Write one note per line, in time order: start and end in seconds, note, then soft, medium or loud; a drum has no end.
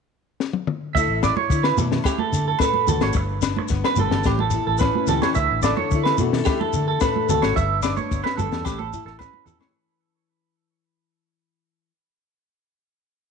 0.40 snare medium
0.53 high tom medium
0.67 mid tom medium
0.95 1.06 D2 medium
0.95 1.50 E4 medium
0.95 1.24 A4 medium
0.95 1.21 E5 medium
0.95 muted steel-string acoustic guitar stroke medium
0.95 kick medium
0.95 shekere medium
1.08 1.30 A1 medium
1.23 1.36 D5 medium
1.23 snare medium
1.23 low agogo medium
1.23 shekere medium
1.37 1.63 C#5 medium
1.37 high conga medium
1.50 1.71 D3 loud
1.50 3.13 E4 medium
1.50 kick medium
1.50 shekere medium
1.63 1.77 B4 medium
1.63 snare medium
1.63 low agogo medium
1.77 1.99 B2 loud
1.77 3.16 A3 medium
1.77 2.60 A4 medium
1.77 muted clean electric guitar stroke medium
1.77 high conga medium
1.77 low conga medium
1.77 shekere medium
1.92 snare medium
1.92 low conga medium
2.04 2.19 G4 medium
2.04 kick medium
2.04 snare medium
2.04 low agogo medium
2.04 shekere medium
2.19 2.45 A4 medium
2.19 high conga medium
2.32 2.54 D3 medium
2.32 shekere medium
2.48 2.60 A4 medium
2.59 3.13 A2 medium
2.59 2.88 A4 medium
2.59 2.87 B4 medium
2.59 kick medium
2.59 snare medium
2.59 low agogo medium
2.59 shekere medium
2.74 high conga medium
2.87 2.98 D2 medium
2.87 3.16 F#4 medium
2.87 3.02 A4 medium
2.87 low conga medium
2.87 shekere loud
3.01 3.12 G#1 loud
3.01 3.15 C#5 medium
3.01 snare medium
3.01 high conga medium
3.01 low agogo medium
3.01 shekere soft
3.13 3.58 G1 medium
3.13 4.22 G2 medium
3.13 muted clean electric guitar stroke medium
3.13 kick loud
3.13 shekere medium
3.42 4.22 D4 medium
3.42 snare medium
3.42 low agogo medium
3.42 shekere medium
3.56 muted clean electric guitar stroke medium
3.56 high conga medium
3.68 3.81 G1 loud
3.68 4.22 B3 medium
3.68 kick medium
3.68 snare soft
3.68 shekere medium
3.84 3.98 B4 medium
3.84 snare medium
3.84 low agogo medium
3.96 4.08 G1 medium
3.96 4.22 G3 medium
3.96 4.22 A4 medium
3.96 4.25 A4 medium
3.96 high conga medium
3.96 low conga medium
3.96 shekere medium
4.10 4.22 G1 medium
4.10 snare medium
4.10 low conga medium
4.24 4.58 A1 loud
4.24 5.33 A2 medium
4.24 4.39 G4 medium
4.24 kick loud
4.24 snare medium
4.24 low agogo medium
4.24 shekere medium
4.39 4.66 A4 medium
4.39 high conga medium
4.50 5.33 E4 medium
4.50 shekere medium
4.67 4.89 A1 medium
4.67 4.79 A4 medium
4.78 5.33 C#4 medium
4.78 5.06 B4 medium
4.78 kick medium
4.78 snare medium
4.78 low agogo medium
4.78 shekere medium
4.95 high conga medium
5.07 5.19 C#2 medium
5.07 7.56 E3 medium
5.07 5.33 G4 medium
5.07 5.22 A4 medium
5.07 snare soft
5.07 low conga medium
5.07 shekere medium
5.22 5.35 C#5 medium
5.22 snare medium
5.22 high conga medium
5.22 low agogo medium
5.22 shekere soft
5.35 5.47 D2 medium
5.35 7.53 D3 medium
5.35 5.62 E5 medium
5.35 kick medium
5.35 shekere medium
5.51 5.72 A1 medium
5.62 6.19 A4 medium
5.62 5.76 D5 medium
5.62 snare medium
5.62 low agogo medium
5.62 shekere medium
5.77 6.03 C#5 medium
5.77 high conga medium
5.91 6.13 D3 medium
5.91 7.54 E4 medium
5.91 kick medium
5.91 shekere medium
6.03 6.17 B4 medium
6.03 snare medium
6.03 low agogo medium
6.18 6.41 B2 loud
6.18 7.56 A3 medium
6.18 6.34 F#4 medium
6.18 muted clean electric guitar stroke medium
6.18 high conga medium
6.18 low conga medium
6.18 shekere medium
6.33 7.01 A4 medium
6.33 snare medium
6.33 low conga medium
6.45 6.59 G4 medium
6.45 kick loud
6.45 snare medium
6.45 low agogo medium
6.45 shekere medium
6.60 6.86 A4 medium
6.60 high conga medium
6.73 6.96 D3 medium
6.73 shekere medium
6.88 7.00 A4 medium
7.00 7.53 A2 medium
7.00 7.29 A4 medium
7.00 7.27 B4 medium
7.00 kick medium
7.00 snare medium
7.00 low agogo medium
7.00 shekere medium
7.16 high conga medium
7.29 7.40 D2 medium
7.29 7.56 F#4 medium
7.29 7.42 A4 medium
7.29 low conga medium
7.29 shekere loud
7.42 7.53 G#1 medium
7.42 7.55 C#5 medium
7.42 snare medium
7.42 high conga medium
7.42 low agogo medium
7.42 shekere soft
7.56 7.98 G1 loud
7.56 8.62 G2 medium
7.56 7.82 E5 medium
7.56 kick medium
7.56 shekere medium
7.83 8.63 D4 medium
7.83 7.96 D5 medium
7.83 snare medium
7.83 low agogo medium
7.83 shekere loud
7.97 8.23 C#5 medium
7.97 high conga medium
7.97 shekere soft
8.11 8.21 G1 medium
8.11 8.63 B3 medium
8.11 kick medium
8.11 shekere medium
8.24 8.37 B4 medium
8.24 snare medium
8.24 low agogo medium
8.37 8.48 G1 medium
8.37 8.62 G3 medium
8.37 8.63 A4 medium
8.37 high conga medium
8.37 low conga medium
8.37 shekere medium
8.52 8.62 E2 medium
8.52 snare medium
8.52 shekere soft
8.65 8.97 A1 loud
8.65 9.71 A2 medium
8.65 8.78 G4 medium
8.65 kick medium
8.65 snare medium
8.65 low agogo medium
8.65 shekere medium
8.78 9.04 A4 medium
8.78 high conga medium
8.93 9.71 E4 medium
8.93 shekere medium
9.05 9.27 A1 medium
9.05 9.18 A4 medium
9.05 snare soft
9.19 9.71 C#4 medium
9.19 9.45 B4 medium
9.19 kick medium
9.19 snare medium
9.19 low agogo medium
9.19 shekere medium
9.33 high conga medium
9.46 9.57 E2 medium
9.46 11.91 E3 medium
9.46 9.71 G4 medium
9.46 9.59 A4 medium
9.46 low conga medium
9.46 shekere loud
9.60 9.73 C#5 medium
9.60 snare medium
9.60 high conga medium
9.60 low agogo medium